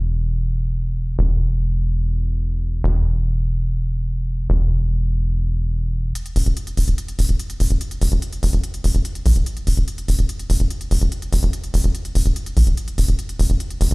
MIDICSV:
0, 0, Header, 1, 3, 480
1, 0, Start_track
1, 0, Tempo, 413793
1, 1378, Time_signature, 4, 2, 24, 8
1, 16176, End_track
2, 0, Start_track
2, 0, Title_t, "Analog synth bass"
2, 0, Program_c, 0, 38
2, 0, Note_on_c, 0, 28, 88
2, 1354, Note_off_c, 0, 28, 0
2, 1378, Note_on_c, 0, 28, 84
2, 3274, Note_off_c, 0, 28, 0
2, 3298, Note_on_c, 0, 28, 87
2, 5194, Note_off_c, 0, 28, 0
2, 5218, Note_on_c, 0, 28, 86
2, 7114, Note_off_c, 0, 28, 0
2, 7377, Note_on_c, 0, 28, 91
2, 7450, Note_off_c, 0, 28, 0
2, 7497, Note_on_c, 0, 28, 86
2, 7570, Note_off_c, 0, 28, 0
2, 7858, Note_on_c, 0, 28, 94
2, 7931, Note_off_c, 0, 28, 0
2, 7978, Note_on_c, 0, 28, 80
2, 8051, Note_off_c, 0, 28, 0
2, 8338, Note_on_c, 0, 28, 96
2, 8410, Note_off_c, 0, 28, 0
2, 8458, Note_on_c, 0, 28, 80
2, 8531, Note_off_c, 0, 28, 0
2, 8818, Note_on_c, 0, 28, 90
2, 8890, Note_off_c, 0, 28, 0
2, 8938, Note_on_c, 0, 28, 79
2, 9010, Note_off_c, 0, 28, 0
2, 9298, Note_on_c, 0, 28, 91
2, 9370, Note_off_c, 0, 28, 0
2, 9418, Note_on_c, 0, 28, 86
2, 9490, Note_off_c, 0, 28, 0
2, 9778, Note_on_c, 0, 28, 95
2, 9850, Note_off_c, 0, 28, 0
2, 9898, Note_on_c, 0, 28, 81
2, 9970, Note_off_c, 0, 28, 0
2, 10258, Note_on_c, 0, 28, 88
2, 10330, Note_off_c, 0, 28, 0
2, 10378, Note_on_c, 0, 28, 80
2, 10450, Note_off_c, 0, 28, 0
2, 10738, Note_on_c, 0, 35, 94
2, 10810, Note_off_c, 0, 35, 0
2, 10858, Note_on_c, 0, 28, 80
2, 10930, Note_off_c, 0, 28, 0
2, 11217, Note_on_c, 0, 28, 91
2, 11290, Note_off_c, 0, 28, 0
2, 11337, Note_on_c, 0, 28, 87
2, 11410, Note_off_c, 0, 28, 0
2, 11698, Note_on_c, 0, 28, 97
2, 11770, Note_off_c, 0, 28, 0
2, 11818, Note_on_c, 0, 28, 84
2, 11890, Note_off_c, 0, 28, 0
2, 12178, Note_on_c, 0, 28, 97
2, 12250, Note_off_c, 0, 28, 0
2, 12298, Note_on_c, 0, 28, 80
2, 12370, Note_off_c, 0, 28, 0
2, 12658, Note_on_c, 0, 28, 90
2, 12730, Note_off_c, 0, 28, 0
2, 12778, Note_on_c, 0, 28, 79
2, 12850, Note_off_c, 0, 28, 0
2, 13137, Note_on_c, 0, 28, 91
2, 13210, Note_off_c, 0, 28, 0
2, 13257, Note_on_c, 0, 28, 85
2, 13330, Note_off_c, 0, 28, 0
2, 13617, Note_on_c, 0, 28, 95
2, 13690, Note_off_c, 0, 28, 0
2, 13737, Note_on_c, 0, 28, 84
2, 13810, Note_off_c, 0, 28, 0
2, 14097, Note_on_c, 0, 28, 93
2, 14170, Note_off_c, 0, 28, 0
2, 14218, Note_on_c, 0, 28, 85
2, 14290, Note_off_c, 0, 28, 0
2, 14577, Note_on_c, 0, 35, 88
2, 14650, Note_off_c, 0, 35, 0
2, 14697, Note_on_c, 0, 28, 80
2, 14770, Note_off_c, 0, 28, 0
2, 15057, Note_on_c, 0, 28, 94
2, 15130, Note_off_c, 0, 28, 0
2, 15178, Note_on_c, 0, 28, 86
2, 15250, Note_off_c, 0, 28, 0
2, 15538, Note_on_c, 0, 28, 101
2, 15610, Note_off_c, 0, 28, 0
2, 15657, Note_on_c, 0, 28, 82
2, 15730, Note_off_c, 0, 28, 0
2, 16017, Note_on_c, 0, 28, 96
2, 16090, Note_off_c, 0, 28, 0
2, 16137, Note_on_c, 0, 28, 81
2, 16176, Note_off_c, 0, 28, 0
2, 16176, End_track
3, 0, Start_track
3, 0, Title_t, "Drums"
3, 7138, Note_on_c, 9, 42, 84
3, 7254, Note_off_c, 9, 42, 0
3, 7258, Note_on_c, 9, 42, 53
3, 7374, Note_off_c, 9, 42, 0
3, 7378, Note_on_c, 9, 46, 103
3, 7494, Note_off_c, 9, 46, 0
3, 7498, Note_on_c, 9, 42, 55
3, 7614, Note_off_c, 9, 42, 0
3, 7618, Note_on_c, 9, 42, 82
3, 7734, Note_off_c, 9, 42, 0
3, 7738, Note_on_c, 9, 42, 52
3, 7854, Note_off_c, 9, 42, 0
3, 7857, Note_on_c, 9, 46, 94
3, 7973, Note_off_c, 9, 46, 0
3, 7978, Note_on_c, 9, 42, 53
3, 8094, Note_off_c, 9, 42, 0
3, 8098, Note_on_c, 9, 42, 81
3, 8214, Note_off_c, 9, 42, 0
3, 8218, Note_on_c, 9, 42, 56
3, 8334, Note_off_c, 9, 42, 0
3, 8338, Note_on_c, 9, 46, 102
3, 8454, Note_off_c, 9, 46, 0
3, 8458, Note_on_c, 9, 42, 57
3, 8574, Note_off_c, 9, 42, 0
3, 8578, Note_on_c, 9, 42, 82
3, 8694, Note_off_c, 9, 42, 0
3, 8697, Note_on_c, 9, 42, 59
3, 8813, Note_off_c, 9, 42, 0
3, 8817, Note_on_c, 9, 46, 93
3, 8933, Note_off_c, 9, 46, 0
3, 8937, Note_on_c, 9, 42, 53
3, 9053, Note_off_c, 9, 42, 0
3, 9058, Note_on_c, 9, 42, 82
3, 9174, Note_off_c, 9, 42, 0
3, 9177, Note_on_c, 9, 42, 51
3, 9293, Note_off_c, 9, 42, 0
3, 9297, Note_on_c, 9, 46, 111
3, 9413, Note_off_c, 9, 46, 0
3, 9417, Note_on_c, 9, 42, 52
3, 9533, Note_off_c, 9, 42, 0
3, 9537, Note_on_c, 9, 42, 80
3, 9653, Note_off_c, 9, 42, 0
3, 9657, Note_on_c, 9, 42, 51
3, 9773, Note_off_c, 9, 42, 0
3, 9778, Note_on_c, 9, 46, 98
3, 9894, Note_off_c, 9, 46, 0
3, 9897, Note_on_c, 9, 42, 55
3, 10013, Note_off_c, 9, 42, 0
3, 10017, Note_on_c, 9, 42, 77
3, 10133, Note_off_c, 9, 42, 0
3, 10137, Note_on_c, 9, 42, 53
3, 10253, Note_off_c, 9, 42, 0
3, 10257, Note_on_c, 9, 46, 107
3, 10373, Note_off_c, 9, 46, 0
3, 10377, Note_on_c, 9, 42, 56
3, 10493, Note_off_c, 9, 42, 0
3, 10497, Note_on_c, 9, 42, 78
3, 10613, Note_off_c, 9, 42, 0
3, 10618, Note_on_c, 9, 42, 54
3, 10734, Note_off_c, 9, 42, 0
3, 10737, Note_on_c, 9, 46, 91
3, 10853, Note_off_c, 9, 46, 0
3, 10857, Note_on_c, 9, 42, 53
3, 10973, Note_off_c, 9, 42, 0
3, 10977, Note_on_c, 9, 42, 76
3, 11093, Note_off_c, 9, 42, 0
3, 11097, Note_on_c, 9, 42, 49
3, 11213, Note_off_c, 9, 42, 0
3, 11217, Note_on_c, 9, 46, 110
3, 11333, Note_off_c, 9, 46, 0
3, 11337, Note_on_c, 9, 42, 51
3, 11453, Note_off_c, 9, 42, 0
3, 11457, Note_on_c, 9, 42, 72
3, 11573, Note_off_c, 9, 42, 0
3, 11577, Note_on_c, 9, 42, 48
3, 11693, Note_off_c, 9, 42, 0
3, 11697, Note_on_c, 9, 46, 94
3, 11813, Note_off_c, 9, 46, 0
3, 11817, Note_on_c, 9, 42, 51
3, 11933, Note_off_c, 9, 42, 0
3, 11938, Note_on_c, 9, 42, 79
3, 12054, Note_off_c, 9, 42, 0
3, 12058, Note_on_c, 9, 42, 51
3, 12174, Note_off_c, 9, 42, 0
3, 12178, Note_on_c, 9, 46, 113
3, 12294, Note_off_c, 9, 46, 0
3, 12298, Note_on_c, 9, 42, 54
3, 12414, Note_off_c, 9, 42, 0
3, 12418, Note_on_c, 9, 42, 77
3, 12534, Note_off_c, 9, 42, 0
3, 12538, Note_on_c, 9, 42, 51
3, 12654, Note_off_c, 9, 42, 0
3, 12658, Note_on_c, 9, 46, 95
3, 12774, Note_off_c, 9, 46, 0
3, 12777, Note_on_c, 9, 42, 52
3, 12893, Note_off_c, 9, 42, 0
3, 12898, Note_on_c, 9, 42, 72
3, 13014, Note_off_c, 9, 42, 0
3, 13018, Note_on_c, 9, 42, 49
3, 13134, Note_off_c, 9, 42, 0
3, 13137, Note_on_c, 9, 46, 110
3, 13253, Note_off_c, 9, 46, 0
3, 13258, Note_on_c, 9, 42, 52
3, 13374, Note_off_c, 9, 42, 0
3, 13378, Note_on_c, 9, 42, 78
3, 13494, Note_off_c, 9, 42, 0
3, 13498, Note_on_c, 9, 42, 48
3, 13614, Note_off_c, 9, 42, 0
3, 13617, Note_on_c, 9, 46, 96
3, 13733, Note_off_c, 9, 46, 0
3, 13738, Note_on_c, 9, 42, 49
3, 13854, Note_off_c, 9, 42, 0
3, 13858, Note_on_c, 9, 42, 70
3, 13974, Note_off_c, 9, 42, 0
3, 13978, Note_on_c, 9, 42, 52
3, 14094, Note_off_c, 9, 42, 0
3, 14098, Note_on_c, 9, 46, 109
3, 14214, Note_off_c, 9, 46, 0
3, 14218, Note_on_c, 9, 42, 53
3, 14334, Note_off_c, 9, 42, 0
3, 14338, Note_on_c, 9, 42, 75
3, 14454, Note_off_c, 9, 42, 0
3, 14458, Note_on_c, 9, 42, 53
3, 14574, Note_off_c, 9, 42, 0
3, 14577, Note_on_c, 9, 46, 93
3, 14693, Note_off_c, 9, 46, 0
3, 14698, Note_on_c, 9, 42, 52
3, 14814, Note_off_c, 9, 42, 0
3, 14817, Note_on_c, 9, 42, 77
3, 14933, Note_off_c, 9, 42, 0
3, 14938, Note_on_c, 9, 42, 50
3, 15054, Note_off_c, 9, 42, 0
3, 15058, Note_on_c, 9, 46, 106
3, 15174, Note_off_c, 9, 46, 0
3, 15178, Note_on_c, 9, 42, 53
3, 15294, Note_off_c, 9, 42, 0
3, 15298, Note_on_c, 9, 42, 77
3, 15414, Note_off_c, 9, 42, 0
3, 15418, Note_on_c, 9, 42, 50
3, 15534, Note_off_c, 9, 42, 0
3, 15538, Note_on_c, 9, 46, 91
3, 15654, Note_off_c, 9, 46, 0
3, 15658, Note_on_c, 9, 42, 52
3, 15774, Note_off_c, 9, 42, 0
3, 15778, Note_on_c, 9, 42, 71
3, 15894, Note_off_c, 9, 42, 0
3, 15898, Note_on_c, 9, 42, 50
3, 16014, Note_off_c, 9, 42, 0
3, 16018, Note_on_c, 9, 46, 100
3, 16134, Note_off_c, 9, 46, 0
3, 16138, Note_on_c, 9, 42, 53
3, 16176, Note_off_c, 9, 42, 0
3, 16176, End_track
0, 0, End_of_file